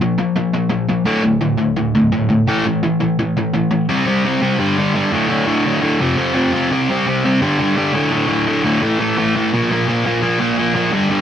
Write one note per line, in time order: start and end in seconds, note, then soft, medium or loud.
0.02 0.17 A#2 medium
0.02 0.17 F3 medium
0.18 0.34 A#2 medium
0.18 0.35 F3 medium
0.36 0.52 A#2 medium
0.36 0.52 F3 medium
0.54 0.69 A#2 medium
0.54 0.69 F3 medium
0.70 0.87 A#2 medium
0.70 0.87 F3 medium
0.89 1.05 A#2 medium
0.89 1.05 F3 medium
1.06 1.22 D2 medium
1.06 1.23 A2 loud
1.06 1.23 D3 loud
1.23 1.40 D2 medium
1.23 1.40 A2 medium
1.41 1.57 D2 medium
1.41 1.58 A2 medium
1.58 1.75 D2 medium
1.58 1.75 A2 medium
1.77 1.93 D2 medium
1.77 1.93 A2 medium
1.95 2.11 D2 medium
1.95 2.11 A2 medium
2.12 2.28 D2 medium
2.12 2.29 A2 medium
2.29 2.46 D2 medium
2.29 2.46 A2 medium
2.48 2.65 A2 medium
2.48 2.65 E3 loud
2.48 2.65 A3 loud
2.66 2.82 A2 medium
2.66 2.82 E3 medium
2.83 2.99 A2 medium
2.83 3.00 E3 medium
3.00 3.17 A2 medium
3.00 3.17 E3 medium
3.19 3.35 A2 medium
3.19 3.35 E3 medium
3.37 3.52 A2 medium
3.37 3.53 E3 medium
3.54 3.70 A2 medium
3.54 3.70 E3 medium
3.71 3.87 A2 medium
3.71 3.87 E3 medium
3.89 4.04 C3 medium
3.89 4.05 G3 loud
3.89 4.06 C4 loud
4.05 4.23 C3 medium
4.05 4.24 G3 medium
4.05 4.24 C4 medium
4.25 4.40 C3 medium
4.25 4.41 G3 medium
4.25 4.41 C4 medium
4.41 4.58 C3 medium
4.41 4.58 G3 medium
4.41 4.59 C4 medium
4.59 4.76 G2 medium
4.59 4.77 D3 medium
4.59 4.78 G3 loud
4.78 4.93 G2 medium
4.78 4.94 D3 medium
4.78 4.94 G3 medium
4.95 5.12 G2 medium
4.95 5.12 D3 medium
4.95 5.12 G3 medium
5.13 5.29 D2 medium
5.13 5.29 A2 medium
5.13 5.30 D3 medium
5.30 5.46 D2 medium
5.30 5.46 A2 loud
5.30 5.47 D3 loud
5.47 5.63 D2 medium
5.47 5.64 A2 medium
5.47 5.65 D3 medium
5.65 5.81 D2 medium
5.65 5.81 A2 medium
5.65 5.82 D3 medium
5.82 5.99 D2 medium
5.82 5.99 A2 medium
5.82 6.00 D3 medium
6.01 6.16 F2 medium
6.01 6.16 C3 loud
6.01 6.16 F3 loud
6.17 6.33 F2 medium
6.17 6.34 C3 medium
6.17 6.34 F3 medium
6.34 6.52 F2 medium
6.34 6.53 C3 medium
6.34 6.53 F3 medium
6.53 6.70 F2 medium
6.53 6.71 C3 medium
6.53 6.71 F3 medium
6.72 6.89 C3 loud
6.72 6.89 G3 loud
6.72 6.90 C4 loud
6.90 7.06 C3 medium
6.90 7.06 G3 medium
6.90 7.08 C4 medium
7.07 7.23 C3 medium
7.07 7.24 G3 medium
7.07 7.24 C4 medium
7.24 7.41 C3 medium
7.24 7.41 G3 medium
7.24 7.41 C4 medium
7.42 7.58 G2 medium
7.42 7.59 D3 loud
7.42 7.59 G3 loud
7.59 7.75 G2 medium
7.59 7.76 D3 medium
7.59 7.77 G3 medium
7.77 7.93 G2 medium
7.77 7.93 D3 medium
7.77 7.94 G3 loud
7.93 8.09 D2 medium
7.93 8.11 A2 medium
7.93 8.11 D3 loud
8.11 8.27 D2 medium
8.11 8.27 A2 loud
8.11 8.27 D3 loud
8.28 8.46 D2 medium
8.28 8.46 A2 medium
8.28 8.47 D3 medium
8.47 8.64 D2 medium
8.47 8.64 A2 medium
8.47 8.64 D3 loud
8.65 8.82 D2 medium
8.65 8.81 A2 medium
8.65 8.81 D3 loud
8.82 8.98 A2 loud
8.82 8.98 E3 medium
8.82 8.99 A3 loud
8.99 9.16 A2 medium
8.99 9.17 E3 medium
8.99 9.17 A3 loud
9.17 9.34 A2 medium
9.17 9.34 E3 medium
9.17 9.35 A3 medium
9.35 9.52 A2 medium
9.35 9.52 E3 medium
9.35 9.52 A3 medium
9.53 9.69 A#2 medium
9.53 9.70 F3 loud
9.53 9.71 A#3 loud
9.71 9.86 A#2 medium
9.71 9.87 F3 medium
9.71 9.87 A#3 loud
9.87 10.04 A#2 medium
9.87 10.05 F3 medium
9.87 10.04 A#3 medium
10.05 10.21 A#2 medium
10.05 10.21 F3 medium
10.05 10.22 A#3 medium
10.22 10.38 A#2 medium
10.22 10.39 F3 loud
10.22 10.40 A#3 loud
10.39 10.56 A#2 medium
10.39 10.57 F3 medium
10.39 10.58 A#3 medium
10.57 10.74 A#2 medium
10.57 10.74 F3 medium
10.57 10.75 A#3 medium
10.75 10.92 A#2 medium
10.75 10.92 F3 medium
10.75 10.92 A#3 medium
10.93 11.09 G2 loud
10.93 11.10 D3 loud
10.93 11.10 G3 loud
11.10 11.21 G2 medium
11.10 11.21 D3 loud
11.10 11.21 G3 loud